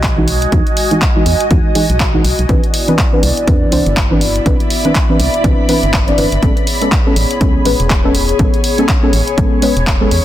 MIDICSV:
0, 0, Header, 1, 6, 480
1, 0, Start_track
1, 0, Tempo, 491803
1, 512, Time_signature, 4, 2, 24, 8
1, 10003, End_track
2, 0, Start_track
2, 0, Title_t, "Ambient pad"
2, 0, Program_c, 0, 92
2, 0, Note_on_c, 0, 66, 87
2, 0, Note_on_c, 0, 75, 70
2, 0, Note_on_c, 0, 80, 75
2, 2431, Note_off_c, 0, 80, 0
2, 2432, Note_on_c, 0, 64, 72
2, 2433, Note_off_c, 0, 75, 0
2, 3135, Note_on_c, 0, 83, 89
2, 3136, Note_on_c, 0, 74, 79
2, 3911, Note_off_c, 0, 66, 0
2, 6274, Note_off_c, 0, 74, 0
2, 6277, Note_on_c, 0, 68, 68
2, 6815, Note_on_c, 0, 73, 77
2, 7319, Note_off_c, 0, 64, 0
2, 10003, Note_off_c, 0, 68, 0
2, 10003, Note_off_c, 0, 73, 0
2, 10003, Note_off_c, 0, 83, 0
2, 10003, End_track
3, 0, Start_track
3, 0, Title_t, "Analog synth pad"
3, 0, Program_c, 1, 89
3, 0, Note_on_c, 1, 56, 77
3, 0, Note_on_c, 1, 66, 70
3, 0, Note_on_c, 1, 75, 83
3, 2393, Note_off_c, 1, 56, 0
3, 2393, Note_off_c, 1, 66, 0
3, 2393, Note_off_c, 1, 75, 0
3, 2429, Note_on_c, 1, 64, 69
3, 2430, Note_on_c, 1, 74, 86
3, 2431, Note_on_c, 1, 59, 76
3, 4332, Note_off_c, 1, 74, 0
3, 4352, Note_on_c, 1, 76, 86
3, 6232, Note_off_c, 1, 64, 0
3, 6233, Note_off_c, 1, 59, 0
3, 6253, Note_off_c, 1, 76, 0
3, 6271, Note_on_c, 1, 68, 69
3, 6271, Note_on_c, 1, 73, 84
3, 6272, Note_on_c, 1, 59, 79
3, 10003, Note_off_c, 1, 59, 0
3, 10003, Note_off_c, 1, 68, 0
3, 10003, Note_off_c, 1, 73, 0
3, 10003, End_track
4, 0, Start_track
4, 0, Title_t, "Synth stab"
4, 0, Program_c, 2, 62
4, 168, Note_on_c, 2, 52, 98
4, 171, Note_on_c, 2, 56, 87
4, 173, Note_on_c, 2, 63, 89
4, 176, Note_on_c, 2, 66, 104
4, 244, Note_off_c, 2, 52, 0
4, 245, Note_off_c, 2, 56, 0
4, 247, Note_off_c, 2, 63, 0
4, 248, Note_off_c, 2, 66, 0
4, 507, Note_on_c, 2, 52, 80
4, 509, Note_on_c, 2, 56, 73
4, 512, Note_on_c, 2, 63, 71
4, 515, Note_on_c, 2, 66, 88
4, 614, Note_off_c, 2, 52, 0
4, 615, Note_off_c, 2, 56, 0
4, 616, Note_off_c, 2, 63, 0
4, 618, Note_off_c, 2, 66, 0
4, 889, Note_on_c, 2, 52, 86
4, 891, Note_on_c, 2, 56, 79
4, 894, Note_on_c, 2, 63, 79
4, 896, Note_on_c, 2, 66, 94
4, 965, Note_off_c, 2, 52, 0
4, 966, Note_off_c, 2, 56, 0
4, 967, Note_off_c, 2, 63, 0
4, 968, Note_off_c, 2, 66, 0
4, 1128, Note_on_c, 2, 52, 75
4, 1131, Note_on_c, 2, 56, 69
4, 1133, Note_on_c, 2, 63, 71
4, 1135, Note_on_c, 2, 66, 84
4, 1204, Note_off_c, 2, 52, 0
4, 1205, Note_off_c, 2, 56, 0
4, 1207, Note_off_c, 2, 63, 0
4, 1208, Note_off_c, 2, 66, 0
4, 1468, Note_on_c, 2, 52, 78
4, 1470, Note_on_c, 2, 56, 73
4, 1473, Note_on_c, 2, 63, 73
4, 1475, Note_on_c, 2, 66, 89
4, 1686, Note_off_c, 2, 52, 0
4, 1687, Note_off_c, 2, 56, 0
4, 1689, Note_off_c, 2, 63, 0
4, 1690, Note_off_c, 2, 66, 0
4, 1708, Note_on_c, 2, 52, 84
4, 1710, Note_on_c, 2, 56, 79
4, 1713, Note_on_c, 2, 63, 78
4, 1715, Note_on_c, 2, 68, 92
4, 1814, Note_off_c, 2, 52, 0
4, 1815, Note_off_c, 2, 56, 0
4, 1817, Note_off_c, 2, 63, 0
4, 1818, Note_off_c, 2, 68, 0
4, 2089, Note_on_c, 2, 52, 95
4, 2091, Note_on_c, 2, 56, 87
4, 2094, Note_on_c, 2, 63, 88
4, 2096, Note_on_c, 2, 66, 106
4, 2165, Note_off_c, 2, 52, 0
4, 2166, Note_off_c, 2, 56, 0
4, 2167, Note_off_c, 2, 63, 0
4, 2168, Note_off_c, 2, 66, 0
4, 2427, Note_on_c, 2, 52, 81
4, 2430, Note_on_c, 2, 60, 71
4, 2432, Note_on_c, 2, 62, 74
4, 2435, Note_on_c, 2, 71, 86
4, 2534, Note_off_c, 2, 52, 0
4, 2535, Note_off_c, 2, 60, 0
4, 2536, Note_off_c, 2, 62, 0
4, 2538, Note_off_c, 2, 71, 0
4, 2809, Note_on_c, 2, 52, 89
4, 2811, Note_on_c, 2, 60, 81
4, 2814, Note_on_c, 2, 62, 81
4, 2817, Note_on_c, 2, 71, 98
4, 2885, Note_off_c, 2, 52, 0
4, 2886, Note_off_c, 2, 60, 0
4, 2887, Note_off_c, 2, 62, 0
4, 2889, Note_off_c, 2, 71, 0
4, 3050, Note_on_c, 2, 52, 77
4, 3053, Note_on_c, 2, 60, 70
4, 3056, Note_on_c, 2, 62, 70
4, 3058, Note_on_c, 2, 71, 84
4, 3125, Note_off_c, 2, 52, 0
4, 3127, Note_off_c, 2, 60, 0
4, 3128, Note_off_c, 2, 62, 0
4, 3129, Note_off_c, 2, 71, 0
4, 3388, Note_on_c, 2, 52, 80
4, 3391, Note_on_c, 2, 60, 73
4, 3394, Note_on_c, 2, 62, 75
4, 3396, Note_on_c, 2, 71, 87
4, 3606, Note_off_c, 2, 52, 0
4, 3608, Note_off_c, 2, 60, 0
4, 3609, Note_off_c, 2, 62, 0
4, 3610, Note_off_c, 2, 71, 0
4, 3629, Note_on_c, 2, 52, 84
4, 3631, Note_on_c, 2, 60, 77
4, 3634, Note_on_c, 2, 62, 76
4, 3636, Note_on_c, 2, 72, 91
4, 3735, Note_off_c, 2, 52, 0
4, 3736, Note_off_c, 2, 60, 0
4, 3737, Note_off_c, 2, 62, 0
4, 3738, Note_off_c, 2, 72, 0
4, 4009, Note_on_c, 2, 52, 97
4, 4012, Note_on_c, 2, 60, 87
4, 4014, Note_on_c, 2, 62, 90
4, 4017, Note_on_c, 2, 71, 106
4, 4085, Note_off_c, 2, 52, 0
4, 4086, Note_off_c, 2, 60, 0
4, 4087, Note_off_c, 2, 62, 0
4, 4088, Note_off_c, 2, 71, 0
4, 4348, Note_on_c, 2, 52, 78
4, 4351, Note_on_c, 2, 60, 71
4, 4353, Note_on_c, 2, 62, 72
4, 4356, Note_on_c, 2, 71, 86
4, 4454, Note_off_c, 2, 52, 0
4, 4456, Note_off_c, 2, 60, 0
4, 4457, Note_off_c, 2, 62, 0
4, 4458, Note_off_c, 2, 71, 0
4, 4729, Note_on_c, 2, 52, 87
4, 4732, Note_on_c, 2, 60, 80
4, 4734, Note_on_c, 2, 62, 81
4, 4736, Note_on_c, 2, 71, 95
4, 4805, Note_off_c, 2, 52, 0
4, 4806, Note_off_c, 2, 60, 0
4, 4807, Note_off_c, 2, 62, 0
4, 4808, Note_off_c, 2, 71, 0
4, 4969, Note_on_c, 2, 52, 75
4, 4972, Note_on_c, 2, 60, 71
4, 4974, Note_on_c, 2, 62, 68
4, 4976, Note_on_c, 2, 71, 84
4, 5044, Note_off_c, 2, 52, 0
4, 5046, Note_off_c, 2, 60, 0
4, 5047, Note_off_c, 2, 62, 0
4, 5048, Note_off_c, 2, 71, 0
4, 5308, Note_on_c, 2, 52, 81
4, 5310, Note_on_c, 2, 60, 72
4, 5312, Note_on_c, 2, 62, 74
4, 5315, Note_on_c, 2, 71, 89
4, 5526, Note_off_c, 2, 52, 0
4, 5527, Note_off_c, 2, 60, 0
4, 5529, Note_off_c, 2, 62, 0
4, 5530, Note_off_c, 2, 71, 0
4, 5548, Note_on_c, 2, 52, 78
4, 5551, Note_on_c, 2, 60, 71
4, 5553, Note_on_c, 2, 62, 70
4, 5556, Note_on_c, 2, 71, 87
4, 5654, Note_off_c, 2, 52, 0
4, 5656, Note_off_c, 2, 60, 0
4, 5657, Note_off_c, 2, 62, 0
4, 5658, Note_off_c, 2, 71, 0
4, 5929, Note_on_c, 2, 52, 89
4, 5932, Note_on_c, 2, 60, 80
4, 5934, Note_on_c, 2, 62, 83
4, 5937, Note_on_c, 2, 74, 96
4, 6005, Note_off_c, 2, 52, 0
4, 6006, Note_off_c, 2, 60, 0
4, 6007, Note_off_c, 2, 62, 0
4, 6008, Note_off_c, 2, 74, 0
4, 6029, Note_on_c, 2, 52, 80
4, 6032, Note_on_c, 2, 60, 73
4, 6033, Note_on_c, 2, 62, 73
4, 6036, Note_on_c, 2, 71, 87
4, 6135, Note_off_c, 2, 52, 0
4, 6136, Note_off_c, 2, 60, 0
4, 6137, Note_off_c, 2, 62, 0
4, 6138, Note_off_c, 2, 71, 0
4, 6269, Note_on_c, 2, 56, 79
4, 6271, Note_on_c, 2, 59, 71
4, 6273, Note_on_c, 2, 61, 71
4, 6276, Note_on_c, 2, 69, 86
4, 6375, Note_off_c, 2, 56, 0
4, 6376, Note_off_c, 2, 59, 0
4, 6377, Note_off_c, 2, 61, 0
4, 6378, Note_off_c, 2, 69, 0
4, 6649, Note_on_c, 2, 56, 89
4, 6652, Note_on_c, 2, 59, 78
4, 6654, Note_on_c, 2, 61, 81
4, 6656, Note_on_c, 2, 69, 95
4, 6725, Note_off_c, 2, 56, 0
4, 6726, Note_off_c, 2, 59, 0
4, 6727, Note_off_c, 2, 61, 0
4, 6728, Note_off_c, 2, 69, 0
4, 6891, Note_on_c, 2, 56, 76
4, 6893, Note_on_c, 2, 59, 68
4, 6896, Note_on_c, 2, 61, 68
4, 6898, Note_on_c, 2, 69, 86
4, 6965, Note_off_c, 2, 56, 0
4, 6967, Note_off_c, 2, 59, 0
4, 6968, Note_off_c, 2, 61, 0
4, 6969, Note_off_c, 2, 69, 0
4, 7229, Note_on_c, 2, 56, 81
4, 7231, Note_on_c, 2, 59, 76
4, 7234, Note_on_c, 2, 61, 75
4, 7236, Note_on_c, 2, 69, 89
4, 7447, Note_off_c, 2, 56, 0
4, 7448, Note_off_c, 2, 59, 0
4, 7449, Note_off_c, 2, 61, 0
4, 7450, Note_off_c, 2, 69, 0
4, 7469, Note_on_c, 2, 56, 86
4, 7472, Note_on_c, 2, 59, 77
4, 7474, Note_on_c, 2, 61, 77
4, 7476, Note_on_c, 2, 71, 92
4, 7575, Note_off_c, 2, 56, 0
4, 7576, Note_off_c, 2, 59, 0
4, 7577, Note_off_c, 2, 61, 0
4, 7578, Note_off_c, 2, 71, 0
4, 7850, Note_on_c, 2, 56, 97
4, 7853, Note_on_c, 2, 59, 89
4, 7856, Note_on_c, 2, 61, 88
4, 7858, Note_on_c, 2, 69, 107
4, 7925, Note_off_c, 2, 56, 0
4, 7926, Note_off_c, 2, 59, 0
4, 7928, Note_off_c, 2, 61, 0
4, 7929, Note_off_c, 2, 69, 0
4, 8190, Note_on_c, 2, 56, 77
4, 8192, Note_on_c, 2, 59, 70
4, 8194, Note_on_c, 2, 61, 74
4, 8197, Note_on_c, 2, 69, 87
4, 8295, Note_off_c, 2, 56, 0
4, 8296, Note_off_c, 2, 59, 0
4, 8297, Note_off_c, 2, 61, 0
4, 8299, Note_off_c, 2, 69, 0
4, 8570, Note_on_c, 2, 56, 87
4, 8572, Note_on_c, 2, 59, 80
4, 8575, Note_on_c, 2, 61, 81
4, 8577, Note_on_c, 2, 69, 97
4, 8645, Note_off_c, 2, 56, 0
4, 8646, Note_off_c, 2, 59, 0
4, 8648, Note_off_c, 2, 61, 0
4, 8649, Note_off_c, 2, 69, 0
4, 8810, Note_on_c, 2, 56, 75
4, 8813, Note_on_c, 2, 59, 70
4, 8815, Note_on_c, 2, 61, 70
4, 8817, Note_on_c, 2, 69, 87
4, 8885, Note_off_c, 2, 56, 0
4, 8886, Note_off_c, 2, 59, 0
4, 8888, Note_off_c, 2, 61, 0
4, 8889, Note_off_c, 2, 69, 0
4, 9148, Note_on_c, 2, 56, 79
4, 9150, Note_on_c, 2, 59, 74
4, 9152, Note_on_c, 2, 61, 75
4, 9155, Note_on_c, 2, 69, 88
4, 9366, Note_off_c, 2, 56, 0
4, 9367, Note_off_c, 2, 59, 0
4, 9369, Note_off_c, 2, 61, 0
4, 9370, Note_off_c, 2, 69, 0
4, 9388, Note_on_c, 2, 56, 86
4, 9390, Note_on_c, 2, 59, 78
4, 9392, Note_on_c, 2, 61, 79
4, 9395, Note_on_c, 2, 71, 93
4, 9494, Note_off_c, 2, 56, 0
4, 9496, Note_off_c, 2, 59, 0
4, 9496, Note_off_c, 2, 61, 0
4, 9498, Note_off_c, 2, 71, 0
4, 9768, Note_on_c, 2, 56, 98
4, 9771, Note_on_c, 2, 59, 88
4, 9773, Note_on_c, 2, 61, 88
4, 9775, Note_on_c, 2, 69, 106
4, 9844, Note_off_c, 2, 56, 0
4, 9845, Note_off_c, 2, 59, 0
4, 9847, Note_off_c, 2, 61, 0
4, 9848, Note_off_c, 2, 69, 0
4, 10003, End_track
5, 0, Start_track
5, 0, Title_t, "FM bass"
5, 0, Program_c, 3, 39
5, 0, Note_on_c, 3, 35, 99
5, 451, Note_off_c, 3, 35, 0
5, 512, Note_on_c, 3, 40, 98
5, 599, Note_off_c, 3, 40, 0
5, 1230, Note_on_c, 3, 40, 90
5, 1318, Note_off_c, 3, 40, 0
5, 1471, Note_on_c, 3, 40, 94
5, 1559, Note_off_c, 3, 40, 0
5, 1852, Note_on_c, 3, 35, 84
5, 2131, Note_off_c, 3, 35, 0
5, 2191, Note_on_c, 3, 35, 101
5, 2279, Note_off_c, 3, 35, 0
5, 2332, Note_on_c, 3, 35, 88
5, 2394, Note_off_c, 3, 35, 0
5, 2431, Note_on_c, 3, 36, 97
5, 2519, Note_off_c, 3, 36, 0
5, 3152, Note_on_c, 3, 36, 90
5, 3239, Note_off_c, 3, 36, 0
5, 3392, Note_on_c, 3, 40, 95
5, 3556, Note_off_c, 3, 40, 0
5, 3632, Note_on_c, 3, 36, 77
5, 3719, Note_off_c, 3, 36, 0
5, 3772, Note_on_c, 3, 31, 97
5, 4291, Note_off_c, 3, 31, 0
5, 4352, Note_on_c, 3, 36, 95
5, 4439, Note_off_c, 3, 36, 0
5, 5072, Note_on_c, 3, 36, 90
5, 5159, Note_off_c, 3, 36, 0
5, 5311, Note_on_c, 3, 36, 92
5, 5399, Note_off_c, 3, 36, 0
5, 5693, Note_on_c, 3, 31, 84
5, 5972, Note_off_c, 3, 31, 0
5, 6032, Note_on_c, 3, 31, 99
5, 6119, Note_off_c, 3, 31, 0
5, 6172, Note_on_c, 3, 31, 89
5, 6234, Note_off_c, 3, 31, 0
5, 6271, Note_on_c, 3, 33, 97
5, 6359, Note_off_c, 3, 33, 0
5, 6991, Note_on_c, 3, 33, 91
5, 7079, Note_off_c, 3, 33, 0
5, 7231, Note_on_c, 3, 37, 99
5, 7396, Note_off_c, 3, 37, 0
5, 7471, Note_on_c, 3, 33, 78
5, 7559, Note_off_c, 3, 33, 0
5, 7612, Note_on_c, 3, 28, 98
5, 8131, Note_off_c, 3, 28, 0
5, 8191, Note_on_c, 3, 33, 96
5, 8279, Note_off_c, 3, 33, 0
5, 8912, Note_on_c, 3, 33, 91
5, 8999, Note_off_c, 3, 33, 0
5, 9152, Note_on_c, 3, 33, 93
5, 9239, Note_off_c, 3, 33, 0
5, 9532, Note_on_c, 3, 28, 83
5, 9811, Note_off_c, 3, 28, 0
5, 9872, Note_on_c, 3, 40, 100
5, 9959, Note_off_c, 3, 40, 0
5, 10003, End_track
6, 0, Start_track
6, 0, Title_t, "Drums"
6, 30, Note_on_c, 9, 42, 66
6, 31, Note_on_c, 9, 36, 99
6, 33, Note_on_c, 9, 39, 117
6, 128, Note_off_c, 9, 42, 0
6, 129, Note_off_c, 9, 36, 0
6, 131, Note_off_c, 9, 39, 0
6, 270, Note_on_c, 9, 46, 90
6, 367, Note_off_c, 9, 46, 0
6, 410, Note_on_c, 9, 42, 50
6, 508, Note_off_c, 9, 42, 0
6, 510, Note_on_c, 9, 42, 61
6, 511, Note_on_c, 9, 36, 116
6, 607, Note_off_c, 9, 42, 0
6, 609, Note_off_c, 9, 36, 0
6, 650, Note_on_c, 9, 42, 37
6, 748, Note_off_c, 9, 42, 0
6, 749, Note_on_c, 9, 46, 105
6, 847, Note_off_c, 9, 46, 0
6, 890, Note_on_c, 9, 42, 50
6, 987, Note_off_c, 9, 42, 0
6, 990, Note_on_c, 9, 42, 62
6, 992, Note_on_c, 9, 36, 108
6, 993, Note_on_c, 9, 39, 119
6, 1088, Note_off_c, 9, 42, 0
6, 1089, Note_off_c, 9, 36, 0
6, 1091, Note_off_c, 9, 39, 0
6, 1229, Note_on_c, 9, 46, 91
6, 1327, Note_off_c, 9, 46, 0
6, 1371, Note_on_c, 9, 42, 50
6, 1468, Note_off_c, 9, 42, 0
6, 1470, Note_on_c, 9, 42, 63
6, 1472, Note_on_c, 9, 36, 118
6, 1568, Note_off_c, 9, 42, 0
6, 1569, Note_off_c, 9, 36, 0
6, 1710, Note_on_c, 9, 46, 103
6, 1808, Note_off_c, 9, 46, 0
6, 1851, Note_on_c, 9, 42, 51
6, 1949, Note_off_c, 9, 42, 0
6, 1951, Note_on_c, 9, 42, 62
6, 1952, Note_on_c, 9, 36, 105
6, 1954, Note_on_c, 9, 39, 115
6, 2049, Note_off_c, 9, 36, 0
6, 2049, Note_off_c, 9, 42, 0
6, 2052, Note_off_c, 9, 39, 0
6, 2191, Note_on_c, 9, 46, 89
6, 2289, Note_off_c, 9, 46, 0
6, 2332, Note_on_c, 9, 42, 49
6, 2429, Note_off_c, 9, 42, 0
6, 2432, Note_on_c, 9, 36, 118
6, 2432, Note_on_c, 9, 42, 57
6, 2529, Note_off_c, 9, 36, 0
6, 2530, Note_off_c, 9, 42, 0
6, 2572, Note_on_c, 9, 42, 36
6, 2670, Note_off_c, 9, 42, 0
6, 2671, Note_on_c, 9, 46, 110
6, 2769, Note_off_c, 9, 46, 0
6, 2812, Note_on_c, 9, 42, 49
6, 2910, Note_off_c, 9, 42, 0
6, 2912, Note_on_c, 9, 36, 112
6, 2912, Note_on_c, 9, 42, 64
6, 2916, Note_on_c, 9, 39, 114
6, 3009, Note_off_c, 9, 36, 0
6, 3010, Note_off_c, 9, 42, 0
6, 3013, Note_off_c, 9, 39, 0
6, 3152, Note_on_c, 9, 46, 95
6, 3250, Note_off_c, 9, 46, 0
6, 3293, Note_on_c, 9, 42, 49
6, 3390, Note_off_c, 9, 42, 0
6, 3392, Note_on_c, 9, 36, 120
6, 3392, Note_on_c, 9, 42, 62
6, 3489, Note_off_c, 9, 36, 0
6, 3489, Note_off_c, 9, 42, 0
6, 3631, Note_on_c, 9, 46, 105
6, 3729, Note_off_c, 9, 46, 0
6, 3772, Note_on_c, 9, 42, 49
6, 3869, Note_off_c, 9, 42, 0
6, 3871, Note_on_c, 9, 42, 60
6, 3872, Note_on_c, 9, 36, 106
6, 3875, Note_on_c, 9, 39, 115
6, 3969, Note_off_c, 9, 36, 0
6, 3969, Note_off_c, 9, 42, 0
6, 3972, Note_off_c, 9, 39, 0
6, 4111, Note_on_c, 9, 46, 92
6, 4208, Note_off_c, 9, 46, 0
6, 4252, Note_on_c, 9, 42, 48
6, 4349, Note_off_c, 9, 42, 0
6, 4352, Note_on_c, 9, 36, 120
6, 4352, Note_on_c, 9, 42, 58
6, 4449, Note_off_c, 9, 36, 0
6, 4449, Note_off_c, 9, 42, 0
6, 4492, Note_on_c, 9, 42, 34
6, 4590, Note_off_c, 9, 42, 0
6, 4591, Note_on_c, 9, 46, 106
6, 4689, Note_off_c, 9, 46, 0
6, 4732, Note_on_c, 9, 42, 48
6, 4829, Note_off_c, 9, 42, 0
6, 4831, Note_on_c, 9, 42, 61
6, 4832, Note_on_c, 9, 36, 106
6, 4835, Note_on_c, 9, 39, 113
6, 4929, Note_off_c, 9, 36, 0
6, 4929, Note_off_c, 9, 42, 0
6, 4932, Note_off_c, 9, 39, 0
6, 5071, Note_on_c, 9, 46, 92
6, 5169, Note_off_c, 9, 46, 0
6, 5212, Note_on_c, 9, 42, 48
6, 5310, Note_off_c, 9, 42, 0
6, 5311, Note_on_c, 9, 36, 119
6, 5311, Note_on_c, 9, 42, 59
6, 5409, Note_off_c, 9, 36, 0
6, 5409, Note_off_c, 9, 42, 0
6, 5551, Note_on_c, 9, 46, 106
6, 5649, Note_off_c, 9, 46, 0
6, 5692, Note_on_c, 9, 42, 47
6, 5790, Note_off_c, 9, 42, 0
6, 5791, Note_on_c, 9, 36, 105
6, 5791, Note_on_c, 9, 42, 58
6, 5795, Note_on_c, 9, 39, 111
6, 5889, Note_off_c, 9, 36, 0
6, 5889, Note_off_c, 9, 42, 0
6, 5892, Note_off_c, 9, 39, 0
6, 5932, Note_on_c, 9, 42, 34
6, 6030, Note_off_c, 9, 42, 0
6, 6031, Note_on_c, 9, 46, 92
6, 6129, Note_off_c, 9, 46, 0
6, 6171, Note_on_c, 9, 42, 46
6, 6269, Note_off_c, 9, 42, 0
6, 6271, Note_on_c, 9, 42, 59
6, 6272, Note_on_c, 9, 36, 115
6, 6369, Note_off_c, 9, 36, 0
6, 6369, Note_off_c, 9, 42, 0
6, 6411, Note_on_c, 9, 42, 36
6, 6509, Note_off_c, 9, 42, 0
6, 6511, Note_on_c, 9, 46, 101
6, 6608, Note_off_c, 9, 46, 0
6, 6652, Note_on_c, 9, 42, 49
6, 6749, Note_off_c, 9, 42, 0
6, 6751, Note_on_c, 9, 42, 60
6, 6752, Note_on_c, 9, 36, 103
6, 6755, Note_on_c, 9, 39, 109
6, 6849, Note_off_c, 9, 36, 0
6, 6849, Note_off_c, 9, 42, 0
6, 6852, Note_off_c, 9, 39, 0
6, 6991, Note_on_c, 9, 46, 90
6, 7089, Note_off_c, 9, 46, 0
6, 7131, Note_on_c, 9, 42, 47
6, 7229, Note_off_c, 9, 42, 0
6, 7231, Note_on_c, 9, 42, 60
6, 7232, Note_on_c, 9, 36, 117
6, 7328, Note_off_c, 9, 42, 0
6, 7329, Note_off_c, 9, 36, 0
6, 7471, Note_on_c, 9, 46, 100
6, 7568, Note_off_c, 9, 46, 0
6, 7611, Note_on_c, 9, 42, 48
6, 7709, Note_off_c, 9, 42, 0
6, 7710, Note_on_c, 9, 42, 61
6, 7712, Note_on_c, 9, 36, 104
6, 7714, Note_on_c, 9, 39, 107
6, 7808, Note_off_c, 9, 42, 0
6, 7810, Note_off_c, 9, 36, 0
6, 7811, Note_off_c, 9, 39, 0
6, 7951, Note_on_c, 9, 46, 87
6, 8048, Note_off_c, 9, 46, 0
6, 8091, Note_on_c, 9, 42, 48
6, 8189, Note_off_c, 9, 42, 0
6, 8191, Note_on_c, 9, 42, 61
6, 8192, Note_on_c, 9, 36, 111
6, 8289, Note_off_c, 9, 42, 0
6, 8290, Note_off_c, 9, 36, 0
6, 8332, Note_on_c, 9, 42, 36
6, 8430, Note_off_c, 9, 42, 0
6, 8431, Note_on_c, 9, 46, 100
6, 8529, Note_off_c, 9, 46, 0
6, 8572, Note_on_c, 9, 42, 50
6, 8669, Note_off_c, 9, 42, 0
6, 8671, Note_on_c, 9, 42, 64
6, 8672, Note_on_c, 9, 36, 102
6, 8674, Note_on_c, 9, 39, 108
6, 8769, Note_off_c, 9, 42, 0
6, 8770, Note_off_c, 9, 36, 0
6, 8772, Note_off_c, 9, 39, 0
6, 8911, Note_on_c, 9, 46, 86
6, 9009, Note_off_c, 9, 46, 0
6, 9052, Note_on_c, 9, 42, 49
6, 9150, Note_off_c, 9, 42, 0
6, 9152, Note_on_c, 9, 36, 113
6, 9152, Note_on_c, 9, 42, 64
6, 9250, Note_off_c, 9, 36, 0
6, 9250, Note_off_c, 9, 42, 0
6, 9391, Note_on_c, 9, 46, 97
6, 9489, Note_off_c, 9, 46, 0
6, 9533, Note_on_c, 9, 42, 49
6, 9630, Note_off_c, 9, 42, 0
6, 9632, Note_on_c, 9, 36, 97
6, 9632, Note_on_c, 9, 42, 62
6, 9635, Note_on_c, 9, 39, 108
6, 9729, Note_off_c, 9, 42, 0
6, 9730, Note_off_c, 9, 36, 0
6, 9733, Note_off_c, 9, 39, 0
6, 9871, Note_on_c, 9, 46, 84
6, 9969, Note_off_c, 9, 46, 0
6, 10003, End_track
0, 0, End_of_file